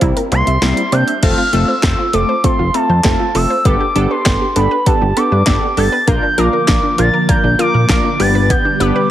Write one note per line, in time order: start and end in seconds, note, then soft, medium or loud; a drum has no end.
0.00 0.13 C2 loud
0.00 0.21 G3 medium
0.00 0.21 A#3 medium
0.00 0.32 C4 medium
0.00 0.21 C4 medium
0.00 0.13 E4 medium
0.00 0.21 E4 medium
0.00 kick medium
0.00 closed hi-hat medium
0.17 0.29 A#4 medium
0.17 closed hi-hat medium
0.32 0.43 C2 loud
0.32 0.51 G3 medium
0.32 0.51 A#3 medium
0.32 0.51 C4 medium
0.32 0.51 E4 medium
0.32 0.44 C5 medium
0.32 0.94 C6 loud
0.32 closed hi-hat medium
0.47 0.58 C2 loud
0.47 0.59 E5 medium
0.47 closed hi-hat medium
0.62 0.73 C2 loud
0.62 0.82 G3 loud
0.62 0.82 A#3 loud
0.62 0.82 C4 loud
0.62 0.82 E4 loud
0.62 0.74 E4 medium
0.62 snare loud
0.62 closed hi-hat medium
0.77 0.89 A#4 medium
0.77 closed hi-hat soft
0.92 1.04 C3 loud
0.92 1.12 G3 medium
0.92 1.12 A#3 medium
0.92 1.12 C4 medium
0.92 1.12 D4 loud
0.92 1.04 C5 medium
0.92 1.22 G6 medium
0.92 closed hi-hat medium
1.07 1.19 E5 medium
1.07 closed hi-hat medium
1.23 1.34 F1 loud
1.23 1.42 A3 loud
1.23 1.35 C4 medium
1.23 1.42 C4 medium
1.23 1.42 F4 medium
1.23 1.42 A4 loud
1.23 1.55 F6 loud
1.23 kick loud
1.23 closed hi-hat medium
1.23 crash loud
1.38 1.50 F4 medium
1.53 1.64 F1 loud
1.53 1.73 A3 loud
1.53 1.73 C4 medium
1.53 1.73 F4 medium
1.53 1.73 A4 loud
1.53 1.68 E6 loud
1.53 closed hi-hat medium
1.68 1.80 C5 medium
1.68 2.13 E6 loud
1.83 1.95 F1 loud
1.83 2.03 A3 medium
1.83 2.03 C4 medium
1.83 2.03 F4 medium
1.83 2.03 C5 medium
1.83 kick loud
1.83 snare loud
1.83 clap medium
1.83 closed hi-hat medium
1.98 2.10 F4 medium
2.13 2.25 F1 loud
2.13 2.33 A3 medium
2.13 2.33 C4 medium
2.13 2.33 F4 medium
2.13 2.26 A4 medium
2.13 2.33 A4 medium
2.13 2.42 D6 medium
2.13 closed hi-hat medium
2.29 2.41 C5 medium
2.44 2.64 A3 medium
2.44 2.56 C4 medium
2.44 2.64 C4 medium
2.44 2.64 F4 medium
2.44 2.64 A4 medium
2.44 2.76 C6 loud
2.44 kick loud
2.44 closed hi-hat medium
2.59 2.70 F1 medium
2.59 2.71 F4 medium
2.74 2.94 A3 medium
2.74 2.94 C4 medium
2.74 2.94 F4 medium
2.74 2.86 A4 medium
2.74 2.94 A4 medium
2.74 3.36 A5 loud
2.74 closed hi-hat medium
2.89 3.01 F2 loud
2.89 3.01 C5 medium
3.04 3.16 F1 loud
3.04 3.24 A3 loud
3.04 3.24 C4 medium
3.04 3.17 C4 medium
3.04 3.24 F4 medium
3.04 3.24 A4 loud
3.04 kick loud
3.04 snare loud
3.04 clap loud
3.04 closed hi-hat medium
3.20 3.32 F4 medium
3.35 3.46 F1 loud
3.35 3.54 A3 medium
3.35 3.54 C4 medium
3.35 3.55 F4 medium
3.35 3.54 A4 medium
3.35 3.47 A4 medium
3.35 3.67 E6 loud
3.35 open hi-hat medium
3.50 3.62 C5 medium
3.65 3.76 G1 loud
3.65 3.85 B3 loud
3.65 3.77 B3 medium
3.65 3.85 D4 medium
3.65 3.85 G4 medium
3.65 3.85 A4 loud
3.65 4.12 D6 loud
3.65 kick loud
3.65 closed hi-hat medium
3.80 3.92 G4 medium
3.95 4.07 G1 loud
3.95 4.15 B3 loud
3.95 4.15 D4 medium
3.95 4.15 G4 medium
3.95 4.15 A4 loud
3.95 closed hi-hat medium
4.11 4.23 B4 medium
4.11 4.55 C6 loud
4.26 4.37 G1 loud
4.26 4.45 B3 medium
4.26 4.45 D4 medium
4.26 4.45 G4 medium
4.26 4.45 A4 medium
4.26 kick loud
4.26 snare loud
4.26 clap medium
4.26 closed hi-hat medium
4.41 4.53 G4 medium
4.56 4.67 G1 loud
4.56 4.76 B3 medium
4.56 4.76 D4 medium
4.56 4.76 G4 medium
4.56 4.68 A4 medium
4.56 4.76 A4 medium
4.56 4.88 B5 loud
4.56 closed hi-hat medium
4.71 4.83 B4 medium
4.86 4.98 B3 medium
4.86 5.06 B3 medium
4.86 5.06 D4 medium
4.86 5.06 G4 medium
4.86 5.06 A4 medium
4.86 5.18 A5 medium
4.86 kick loud
4.86 closed hi-hat medium
5.02 5.13 G1 loud
5.02 5.13 G4 medium
5.17 5.36 B3 medium
5.17 5.36 D4 medium
5.17 5.36 G4 medium
5.17 5.36 A4 medium
5.17 5.29 A4 medium
5.17 5.77 D6 loud
5.17 closed hi-hat medium
5.32 5.43 G2 loud
5.32 5.44 B4 medium
5.47 5.58 G1 loud
5.47 5.67 B3 loud
5.47 5.59 B3 medium
5.47 5.67 D4 medium
5.47 5.66 G4 medium
5.47 5.67 A4 loud
5.47 kick loud
5.47 snare loud
5.47 clap medium
5.47 closed hi-hat medium
5.62 5.74 G4 medium
5.77 5.89 G1 medium
5.77 5.97 B3 medium
5.77 5.97 D4 medium
5.77 5.97 G4 medium
5.77 5.89 A4 medium
5.77 5.97 A4 medium
5.77 6.09 A6 loud
5.77 open hi-hat medium
5.92 6.04 B4 medium
6.07 6.19 A#1 loud
6.07 9.11 D3 medium
6.07 8.18 F3 medium
6.07 6.27 A#3 loud
6.07 6.19 A#3 medium
6.07 8.18 A#3 medium
6.07 6.27 D4 medium
6.07 6.27 F4 medium
6.07 8.18 F4 medium
6.07 6.27 A#4 loud
6.07 8.18 A#4 medium
6.07 6.40 G6 loud
6.07 kick loud
6.07 closed hi-hat medium
6.23 6.35 D4 medium
6.38 6.49 A#1 loud
6.38 6.57 A#3 loud
6.38 6.57 D4 medium
6.38 6.57 F4 medium
6.38 6.57 A#4 loud
6.38 6.98 D6 loud
6.38 closed hi-hat medium
6.53 6.65 A#4 medium
6.68 6.80 A#1 medium
6.68 6.88 A#3 medium
6.68 6.88 D4 medium
6.68 6.88 F4 medium
6.68 6.88 A#4 medium
6.68 kick loud
6.68 snare loud
6.68 clap medium
6.68 closed hi-hat medium
6.83 6.95 D4 medium
6.98 7.10 A#1 loud
6.98 7.18 A#3 medium
6.98 7.18 D4 medium
6.98 7.10 F4 medium
6.98 7.18 F4 medium
6.98 7.18 A#4 medium
6.98 7.30 A6 loud
6.98 closed hi-hat medium
7.13 7.25 A#4 medium
7.29 7.48 A#3 medium
7.29 7.41 A#3 medium
7.29 7.48 D4 medium
7.29 7.48 F4 medium
7.29 7.48 A#4 medium
7.29 7.59 G6 loud
7.29 kick loud
7.29 closed hi-hat medium
7.44 7.55 A#1 medium
7.44 7.56 D4 medium
7.59 7.79 A#3 medium
7.59 7.79 D4 medium
7.59 7.71 F4 medium
7.59 7.79 F4 medium
7.59 7.79 A#4 medium
7.59 8.21 D6 loud
7.59 closed hi-hat medium
7.74 7.85 A#2 loud
7.74 7.86 A#4 medium
7.89 8.01 A#1 loud
7.89 8.09 A#3 loud
7.89 8.01 A#3 medium
7.89 8.09 D4 loud
7.89 8.09 F4 loud
7.89 8.09 A#4 loud
7.89 kick loud
7.89 snare loud
7.89 clap loud
7.89 closed hi-hat medium
8.04 8.16 D4 medium
8.19 8.53 G1 loud
8.19 9.11 G3 medium
8.19 8.68 B3 medium
8.19 9.11 B3 medium
8.19 8.68 D4 medium
8.19 8.68 G4 medium
8.19 8.32 G4 medium
8.19 9.11 G4 medium
8.19 8.68 B4 medium
8.19 9.11 B4 medium
8.19 8.52 A6 loud
8.19 open hi-hat medium
8.35 8.47 B4 medium
8.50 8.62 B3 medium
8.50 8.82 G6 loud
8.50 kick loud
8.50 closed hi-hat medium
8.65 8.77 D4 medium
8.80 8.91 G1 loud
8.80 9.00 B3 loud
8.80 9.00 D4 medium
8.80 9.00 G4 medium
8.80 9.00 B4 loud
8.80 9.11 D6 loud
8.80 closed hi-hat medium
8.96 9.07 B4 medium